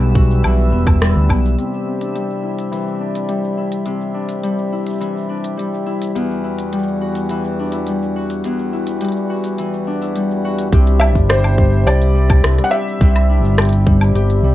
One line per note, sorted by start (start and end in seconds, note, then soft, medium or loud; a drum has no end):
0.00 0.40 B1 medium
0.00 1.63 E2 medium
0.00 0.43 E3 medium
0.00 1.55 E3 medium
0.00 1.01 G3 medium
0.00 1.55 G3 medium
0.00 0.72 B3 medium
0.00 1.55 B3 medium
0.00 1.55 E4 medium
0.00 0.14 F#4 medium
0.00 0.96 B4 medium
0.00 1.59 E6 medium
0.00 shaker soft
0.10 shaker soft
0.15 2.21 F#4 medium
0.15 kick medium
0.15 shaker soft
0.24 shaker soft
0.31 shaker medium
0.43 0.73 B1 medium
0.43 2.71 E3 medium
0.43 low woodblock medium
0.43 shaker medium
0.59 shaker soft
0.64 shaker soft
0.69 1.12 E1 medium
0.69 1.29 B3 medium
0.69 shaker soft
0.74 shaker soft
0.79 shaker soft
0.83 kick medium
0.83 cross-stick soft
0.83 low woodblock medium
0.83 shaker soft
0.88 shaker medium
1.01 2.14 G3 medium
1.01 cross-stick medium
1.01 shaker soft
1.16 1.27 D2 medium
1.29 1.53 B1 medium
1.29 1.92 B3 medium
1.29 kick medium
1.29 low woodblock medium
1.29 shaker soft
1.45 shaker medium
1.58 3.84 C3 medium
1.58 6.12 C3 medium
1.58 10.69 G3 medium
1.58 6.11 D4 medium
1.58 6.12 E4 medium
1.58 closed hi-hat soft
1.58 shaker soft
1.74 shaker soft
1.86 4.86 C4 soft
2.01 3.00 D4 soft
2.01 closed hi-hat soft
2.01 shaker medium
2.15 3.28 G3 medium
2.15 closed hi-hat soft
2.15 shaker soft
2.31 shaker soft
2.43 3.57 E4 medium
2.59 closed hi-hat soft
2.59 shaker medium
2.71 5.00 E3 medium
2.71 closed hi-hat soft
2.71 shaker soft
2.76 shaker soft
2.78 shaker soft
2.81 shaker soft
2.83 shaker soft
2.86 shaker soft
2.88 shaker soft
3.00 4.14 D4 soft
3.15 closed hi-hat soft
3.15 shaker medium
3.28 4.43 G3 soft
3.28 closed hi-hat soft
3.28 shaker soft
3.44 shaker soft
3.57 4.72 E4 medium
3.72 closed hi-hat soft
3.72 shaker medium
3.86 6.20 C3 medium
3.86 closed hi-hat soft
3.86 shaker soft
4.01 shaker soft
4.14 5.29 D4 medium
4.29 closed hi-hat soft
4.29 shaker medium
4.43 5.57 G3 medium
4.43 closed hi-hat soft
4.43 shaker soft
4.59 shaker soft
4.72 5.86 E4 medium
4.87 closed hi-hat soft
4.87 shaker medium
4.90 shaker soft
4.93 shaker soft
4.95 shaker soft
4.98 shaker soft
5.00 7.30 E3 medium
5.00 closed hi-hat soft
5.00 shaker soft
5.02 shaker medium
5.17 shaker soft
5.19 shaker soft
5.21 shaker soft
5.24 shaker soft
5.26 7.59 D4 soft
5.26 shaker soft
5.44 closed hi-hat soft
5.44 shaker medium
5.57 6.72 G3 medium
5.57 closed hi-hat soft
5.57 shaker soft
5.74 shaker soft
5.86 6.44 E4 medium
6.02 closed hi-hat soft
6.02 shaker medium
6.15 8.44 E2 medium
6.15 10.69 E2 medium
6.15 10.68 E3 medium
6.15 10.68 F#4 medium
6.15 closed hi-hat soft
6.15 shaker soft
6.31 shaker soft
6.44 7.72 E4 soft
6.59 closed hi-hat soft
6.59 shaker medium
6.72 7.87 G3 medium
6.72 closed hi-hat soft
6.72 shaker soft
6.79 shaker soft
6.83 shaker soft
7.01 8.16 F#4 medium
7.15 closed hi-hat soft
7.15 shaker medium
7.29 9.58 E3 medium
7.29 closed hi-hat soft
7.29 shaker medium
7.44 shaker soft
7.59 9.87 D4 medium
7.72 8.73 E4 soft
7.72 closed hi-hat soft
7.72 shaker medium
7.87 9.01 G3 medium
7.87 closed hi-hat soft
7.87 shaker soft
8.02 shaker soft
8.16 9.29 F#4 medium
8.30 closed hi-hat soft
8.30 shaker medium
8.44 10.78 E2 medium
8.44 closed hi-hat soft
8.44 shaker medium
8.59 shaker soft
8.73 10.01 E4 medium
8.87 closed hi-hat soft
8.87 shaker medium
9.01 10.15 G3 medium
9.01 closed hi-hat soft
9.01 shaker medium
9.05 closed hi-hat soft
9.09 closed hi-hat soft
9.12 closed hi-hat soft
9.16 shaker soft
9.30 10.44 F#4 medium
9.44 closed hi-hat soft
9.44 shaker medium
9.58 14.55 E3 medium
9.58 closed hi-hat soft
9.58 shaker medium
9.73 shaker soft
9.87 11.01 D4 medium
10.01 12.63 E4 soft
10.01 shaker medium
10.16 11.57 G3 medium
10.16 closed hi-hat soft
10.16 shaker soft
10.31 shaker soft
10.45 11.35 F#4 medium
10.59 closed hi-hat soft
10.59 shaker medium
10.72 11.16 C2 medium
10.72 14.55 C3 medium
10.72 13.00 C3 medium
10.72 14.55 G3 medium
10.72 14.55 D4 medium
10.72 14.55 E4 medium
10.72 11.29 G4 medium
10.72 kick loud
10.72 closed hi-hat medium
10.72 shaker medium
10.87 closed hi-hat soft
10.87 shaker soft
11.00 12.43 D4 medium
11.00 11.06 E5 loud
11.00 low woodblock medium
11.15 11.83 G1 loud
11.15 kick medium
11.15 shaker medium
11.29 11.86 G4 medium
11.29 11.88 C5 medium
11.29 cross-stick loud
11.29 closed hi-hat medium
11.29 shaker medium
11.44 closed hi-hat soft
11.44 low woodblock medium
11.44 shaker soft
11.58 12.14 G3 medium
11.58 kick medium
11.86 12.40 C2 medium
11.86 12.72 G4 medium
11.86 12.40 D5 medium
11.86 closed hi-hat medium
11.86 low woodblock medium
11.86 shaker medium
12.02 closed hi-hat soft
12.02 shaker soft
12.15 13.87 G3 medium
12.30 kick medium
12.30 low woodblock medium
12.30 shaker medium
12.43 12.56 C2 medium
12.43 13.29 D4 medium
12.43 cross-stick loud
12.43 closed hi-hat medium
12.43 shaker medium
12.58 cross-stick soft
12.58 closed hi-hat soft
12.58 shaker soft
12.64 12.72 F#5 medium
12.71 13.01 G4 medium
12.71 13.53 E5 loud
12.88 shaker medium
13.01 13.43 C2 loud
13.01 14.55 C3 medium
13.01 13.58 G4 medium
13.01 kick loud
13.01 closed hi-hat medium
13.01 shaker medium
13.16 closed hi-hat soft
13.16 low woodblock medium
13.16 shaker soft
13.29 14.55 D4 medium
13.43 14.11 G1 loud
13.43 shaker medium
13.58 14.15 G4 medium
13.58 cross-stick loud
13.58 closed hi-hat soft
13.58 low woodblock medium
13.58 shaker medium
13.62 closed hi-hat soft
13.65 closed hi-hat soft
13.69 closed hi-hat medium
13.73 closed hi-hat soft
13.73 shaker soft
13.87 14.44 G3 medium
13.87 kick loud
14.01 low woodblock medium
14.01 shaker medium
14.15 14.39 G1 medium
14.15 14.55 G4 medium
14.15 closed hi-hat medium
14.15 shaker medium
14.30 closed hi-hat soft
14.30 shaker soft
14.43 14.55 C2 medium
14.43 14.55 G3 medium